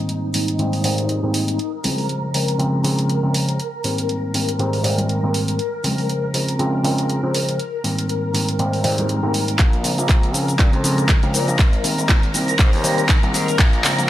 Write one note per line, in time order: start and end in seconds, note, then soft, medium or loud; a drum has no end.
0.00 0.31 G#2 medium
0.00 0.32 D#3 medium
0.00 0.32 G3 medium
0.00 0.32 A#3 medium
0.00 0.32 C4 medium
0.00 1.60 D#4 medium
0.00 1.61 D#5 medium
0.09 closed hi-hat soft
0.34 0.57 G#2 medium
0.34 0.57 D#3 medium
0.34 0.57 G3 medium
0.34 0.57 A#3 medium
0.34 0.57 C4 medium
0.34 open hi-hat loud
0.48 closed hi-hat medium
0.59 0.81 G#2 medium
0.59 0.82 D#3 medium
0.59 0.82 G3 medium
0.59 0.82 A#3 medium
0.59 0.82 C4 medium
0.59 closed hi-hat soft
0.73 open hi-hat medium
0.84 1.20 G#2 medium
0.84 1.20 D#3 medium
0.84 1.20 G3 medium
0.84 1.20 A#3 medium
0.84 1.20 C4 medium
0.84 open hi-hat loud
0.98 closed hi-hat medium
1.09 closed hi-hat soft
1.23 1.58 G#2 medium
1.23 1.58 D#3 medium
1.23 1.58 G3 medium
1.23 1.58 A#3 medium
1.23 1.58 C4 medium
1.34 open hi-hat loud
1.48 closed hi-hat medium
1.59 9.58 A#4 medium
1.59 9.58 A#5 medium
1.59 closed hi-hat soft
1.84 2.31 C#3 medium
1.84 2.32 F3 medium
1.84 2.32 G#3 medium
1.84 2.32 C4 medium
1.84 open hi-hat medium
1.84 tambourine medium
1.84 low conga medium
1.98 open hi-hat medium
1.98 tambourine soft
2.09 closed hi-hat soft
2.09 tambourine soft
2.34 2.56 C#3 medium
2.34 2.57 F3 medium
2.34 2.57 G#3 medium
2.34 2.57 C4 medium
2.34 open hi-hat medium
2.34 tambourine medium
2.48 closed hi-hat medium
2.59 2.81 C#3 medium
2.59 2.81 F3 medium
2.59 2.82 G#3 medium
2.59 2.82 C4 loud
2.59 closed hi-hat soft
2.84 3.20 C#3 medium
2.84 3.20 F3 medium
2.84 3.20 G#3 medium
2.84 3.20 C4 loud
2.84 open hi-hat loud
2.99 closed hi-hat medium
3.10 closed hi-hat soft
3.23 3.58 C#3 medium
3.23 3.58 F3 medium
3.23 3.58 G#3 medium
3.23 3.58 C4 medium
3.34 open hi-hat medium
3.34 tambourine medium
3.49 closed hi-hat medium
3.59 closed hi-hat soft
3.59 tambourine soft
3.84 4.32 G#2 medium
3.84 4.32 D#3 medium
3.84 4.32 G3 medium
3.84 4.32 A#3 medium
3.84 4.32 C4 medium
3.84 open hi-hat medium
3.84 tambourine medium
3.98 closed hi-hat medium
4.09 closed hi-hat soft
4.34 4.57 G#2 medium
4.34 4.57 D#3 medium
4.34 4.57 G3 medium
4.34 4.57 A#3 medium
4.34 4.57 C4 medium
4.34 open hi-hat medium
4.34 tambourine medium
4.49 closed hi-hat medium
4.59 4.82 G#2 medium
4.59 4.82 D#3 medium
4.59 4.82 G3 medium
4.59 4.82 A#3 medium
4.59 4.82 C4 loud
4.59 closed hi-hat soft
4.73 open hi-hat medium
4.84 5.20 G#2 medium
4.84 5.20 D#3 medium
4.84 5.20 G3 medium
4.84 5.20 A#3 medium
4.84 5.20 C4 loud
4.84 open hi-hat medium
4.98 closed hi-hat medium
4.98 tambourine soft
4.98 low conga medium
5.09 closed hi-hat soft
5.09 tambourine soft
5.23 5.58 G#2 medium
5.23 5.58 D#3 medium
5.23 5.58 G3 medium
5.23 5.58 A#3 medium
5.23 5.58 C4 medium
5.34 open hi-hat medium
5.34 tambourine medium
5.48 closed hi-hat medium
5.48 tambourine soft
5.59 closed hi-hat soft
5.59 tambourine soft
5.84 6.31 C#3 medium
5.84 6.31 F3 medium
5.84 6.32 G#3 medium
5.84 6.32 C4 medium
5.84 open hi-hat medium
5.84 tambourine medium
5.84 low conga medium
5.98 open hi-hat medium
5.98 tambourine soft
6.09 closed hi-hat soft
6.09 tambourine soft
6.34 6.56 C#3 medium
6.34 6.57 F3 medium
6.34 6.57 G#3 medium
6.34 6.57 C4 medium
6.34 open hi-hat medium
6.34 tambourine medium
6.48 closed hi-hat medium
6.59 6.81 C#3 medium
6.59 6.82 F3 medium
6.59 6.82 G#3 medium
6.59 6.82 C4 loud
6.59 closed hi-hat soft
6.84 7.20 C#3 medium
6.84 7.20 F3 medium
6.84 7.20 G#3 medium
6.84 7.20 C4 loud
6.84 open hi-hat medium
6.84 tambourine medium
6.98 closed hi-hat medium
7.10 closed hi-hat soft
7.10 tambourine soft
7.23 7.58 C#3 medium
7.23 7.58 F3 medium
7.23 7.58 G#3 medium
7.23 7.58 C4 medium
7.34 open hi-hat loud
7.49 closed hi-hat medium
7.49 tambourine soft
7.60 closed hi-hat soft
7.60 tambourine soft
7.84 8.31 G#2 medium
7.84 8.31 D#3 medium
7.84 8.32 G3 medium
7.84 8.32 A#3 medium
7.84 8.32 C4 medium
7.84 open hi-hat medium
7.84 tambourine medium
7.98 closed hi-hat medium
7.98 tambourine medium
8.09 closed hi-hat soft
8.09 tambourine soft
8.34 8.57 G#2 medium
8.34 8.57 D#3 medium
8.34 8.57 G3 medium
8.34 8.57 A#3 medium
8.34 8.57 C4 medium
8.34 open hi-hat medium
8.34 tambourine medium
8.49 closed hi-hat medium
8.49 tambourine medium
8.59 8.82 G#2 medium
8.59 8.82 D#3 medium
8.59 8.82 G3 medium
8.59 8.82 A#3 medium
8.59 8.82 C4 loud
8.59 closed hi-hat medium
8.73 open hi-hat medium
8.84 9.20 G#2 medium
8.84 9.20 D#3 medium
8.84 9.20 G3 medium
8.84 9.20 A#3 medium
8.84 9.20 C4 loud
8.84 open hi-hat medium
8.84 tambourine medium
8.98 closed hi-hat medium
8.98 tambourine soft
8.98 low conga medium
9.09 closed hi-hat medium
9.09 tambourine soft
9.23 9.58 G#2 medium
9.23 9.58 D#3 medium
9.23 9.58 G3 medium
9.23 9.58 A#3 medium
9.23 9.58 C4 medium
9.23 high conga medium
9.34 open hi-hat medium
9.34 tambourine medium
9.48 closed hi-hat medium
9.48 tambourine medium
9.59 9.92 A#1 medium
9.59 14.10 A#4 medium
9.59 14.10 A#5 medium
9.59 kick loud
9.59 clap soft
9.59 closed hi-hat medium
9.59 cabasa soft
9.73 closed hi-hat soft
9.83 10.31 C#3 medium
9.83 10.31 F3 medium
9.83 10.32 G#3 medium
9.83 10.32 C4 medium
9.83 open hi-hat loud
9.83 cabasa medium
9.98 10.34 A#1 medium
9.98 closed hi-hat soft
9.98 cabasa soft
10.09 kick loud
10.09 clap soft
10.09 closed hi-hat medium
10.09 cabasa soft
10.23 closed hi-hat soft
10.33 10.53 C#2 loud
10.33 10.56 C#3 medium
10.33 10.56 F3 medium
10.33 10.57 G#3 medium
10.33 10.57 C4 medium
10.33 open hi-hat loud
10.33 cabasa medium
10.48 closed hi-hat soft
10.48 cabasa soft
10.59 10.69 A#2 medium
10.59 10.81 C#3 medium
10.59 10.82 F3 medium
10.59 10.82 G#3 medium
10.59 10.82 C4 loud
10.59 kick loud
10.59 clap soft
10.59 closed hi-hat medium
10.59 cabasa soft
10.73 11.04 F2 medium
10.73 closed hi-hat soft
10.84 11.20 C#3 medium
10.84 11.20 F3 medium
10.84 11.20 G#3 medium
10.84 11.20 C4 loud
10.84 open hi-hat loud
10.84 cabasa medium
10.98 closed hi-hat soft
10.98 cabasa soft
11.09 kick loud
11.09 clap medium
11.09 closed hi-hat medium
11.09 cabasa soft
11.23 11.35 C#2 medium
11.23 11.58 C#3 medium
11.23 11.58 F3 medium
11.23 11.58 G#3 medium
11.23 11.58 C4 medium
11.23 closed hi-hat soft
11.34 11.50 A#2 medium
11.34 open hi-hat loud
11.34 cabasa medium
11.48 11.56 A#1 loud
11.48 closed hi-hat soft
11.48 cabasa soft
11.59 kick loud
11.59 clap medium
11.59 closed hi-hat medium
11.59 cabasa soft
11.73 closed hi-hat soft
11.84 12.31 D#3 medium
11.84 12.31 G3 medium
11.84 12.32 A#3 medium
11.84 12.32 C4 medium
11.84 open hi-hat loud
11.84 cabasa medium
11.98 12.36 G#1 loud
11.98 closed hi-hat soft
11.98 cabasa soft
12.09 kick loud
12.09 clap medium
12.09 closed hi-hat medium
12.09 cabasa soft
12.23 closed hi-hat soft
12.34 12.53 C2 medium
12.34 12.56 D#3 medium
12.34 12.57 G3 medium
12.34 12.57 A#3 medium
12.34 12.57 C4 medium
12.34 open hi-hat loud
12.34 cabasa medium
12.48 closed hi-hat soft
12.48 cabasa soft
12.59 12.69 G#2 medium
12.59 12.81 D#3 medium
12.59 12.82 G3 medium
12.59 12.82 A#3 medium
12.59 12.82 C4 loud
12.59 kick loud
12.59 clap medium
12.59 closed hi-hat medium
12.59 cabasa soft
12.73 13.04 D#2 medium
12.73 open hi-hat medium
12.84 13.20 D#3 loud
12.84 13.20 G3 medium
12.84 13.20 A#3 medium
12.84 13.20 C4 loud
12.84 open hi-hat loud
12.84 cabasa medium
12.98 closed hi-hat soft
12.98 cabasa soft
13.09 kick loud
13.09 clap medium
13.09 closed hi-hat medium
13.09 cabasa soft
13.23 13.35 C2 medium
13.23 13.58 D#3 medium
13.23 13.58 G3 medium
13.23 13.58 A#3 medium
13.23 13.58 C4 loud
13.23 closed hi-hat soft
13.34 13.49 G#2 medium
13.34 open hi-hat loud
13.34 cabasa medium
13.48 13.56 G#1 loud
13.48 closed hi-hat soft
13.48 cabasa soft
13.59 13.91 A#1 medium
13.59 kick loud
13.59 clap medium
13.59 closed hi-hat medium
13.59 cabasa soft
13.73 closed hi-hat soft
13.84 14.10 C#3 medium
13.84 14.10 F3 medium
13.84 14.10 G#3 medium
13.84 14.10 C4 loud
13.84 clap medium
13.84 open hi-hat loud
13.84 cabasa medium
13.98 14.10 A#1 loud
13.98 closed hi-hat soft
13.98 cabasa soft